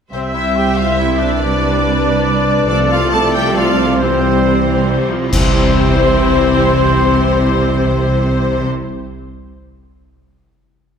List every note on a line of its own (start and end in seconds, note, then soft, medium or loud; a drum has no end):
0.12 2.66 C2 soft
0.12 1.40 C3 soft
0.12 2.66 C3 soft
0.12 2.66 G3 soft
0.12 0.33 C4 soft
0.12 1.38 C4 soft
0.12 0.33 C4 medium
0.12 1.38 C5 soft
0.12 0.21 C5 soft
0.12 1.38 E5 soft
0.22 1.43 C4 soft
0.33 1.29 G3 soft
0.33 0.58 E4 soft
0.33 0.55 E5 soft
0.38 0.58 E4 medium
0.43 1.18 E4 soft
0.54 0.79 G4 medium
0.54 0.67 G4 medium
0.54 1.07 C5 soft
0.54 0.77 G5 medium
0.65 1.93 G4 soft
0.76 0.98 F4 soft
0.76 0.89 F4 medium
0.76 0.97 E5 soft
0.76 0.99 F5 medium
0.87 1.43 C6 soft
0.97 1.20 E4 medium
0.97 1.19 E5 medium
1.01 1.21 E4 medium
1.09 1.43 C5 soft
1.17 2.69 D4 medium
1.17 1.43 E4 soft
1.17 2.65 D5 medium
1.22 2.69 D4 medium
1.31 1.61 G3 soft
1.40 2.67 C3 soft
1.40 2.69 D4 medium
1.40 2.67 B4 medium
1.40 2.67 D5 medium
1.40 3.96 D5 soft
1.52 2.71 C4 soft
1.62 2.56 G3 soft
1.83 2.35 B4 soft
1.94 2.71 G4 soft
2.15 2.71 B5 medium
2.26 3.32 D5 medium
2.36 2.71 B4 soft
2.47 2.99 D4 medium
2.58 2.71 G3 soft
2.68 5.07 C2 medium
2.68 3.98 C3 medium
2.68 5.08 C3 medium
2.68 3.96 F3 medium
2.68 3.09 F3 medium
2.68 3.09 A3 medium
2.68 2.91 D4 medium
2.68 3.96 A4 medium
2.68 3.09 D5 medium
2.68 2.77 D5 medium
2.79 4.20 C4 soft
2.90 3.88 A3 medium
2.90 3.15 F4 medium
2.90 3.13 F4 medium
2.90 3.12 F5 medium
3.11 3.54 F3 medium
3.11 3.54 A3 medium
3.11 3.65 A4 medium
3.11 3.35 A4 medium
3.11 3.52 D5 medium
3.11 3.33 A5 medium
3.15 3.35 A4 medium
3.22 3.77 D4 medium
3.33 3.56 G4 medium
3.33 3.59 G4 medium
3.33 3.53 D5 medium
3.33 3.55 G5 medium
3.54 3.99 F3 medium
3.54 3.99 A3 medium
3.54 4.01 F4 medium
3.54 3.98 D5 medium
3.54 4.01 D5 medium
3.54 3.99 F5 medium
3.58 4.01 F4 medium
3.66 4.01 A4 soft
3.97 5.30 C3 medium
3.97 4.38 E3 medium
3.97 5.10 E3 medium
3.97 5.08 G3 medium
3.97 4.38 G4 soft
3.97 5.07 C5 medium
3.97 5.08 C5 medium
3.97 5.09 C5 medium
4.02 5.12 C4 medium
4.02 5.10 C4 medium
4.11 7.93 G3 soft
4.22 5.19 C4 soft
4.33 5.09 E4 soft
4.43 4.64 C3 medium
4.43 4.99 G4 soft
4.54 7.93 C5 soft
4.65 4.87 E3 medium
4.65 4.88 E5 soft
4.77 7.93 G5 soft
4.86 5.09 G3 medium
4.86 5.58 E5 soft
5.00 5.51 G4 soft
5.10 5.32 F3 medium
5.10 5.45 E4 soft
5.21 5.37 C4 soft
5.31 8.67 C2 medium
5.31 9.25 C3 medium
5.31 8.68 C3 medium
5.31 8.67 E3 medium
5.31 8.67 G3 medium
5.31 8.68 C4 medium
5.31 8.67 E4 medium
5.31 8.67 G4 medium
5.31 8.67 C5 medium
5.31 8.68 C5 medium
5.31 concert bass drum medium
5.31 crash medium
5.39 9.32 C4 medium
5.46 9.39 E4 medium
5.52 9.46 G4 medium
5.59 9.51 E5 medium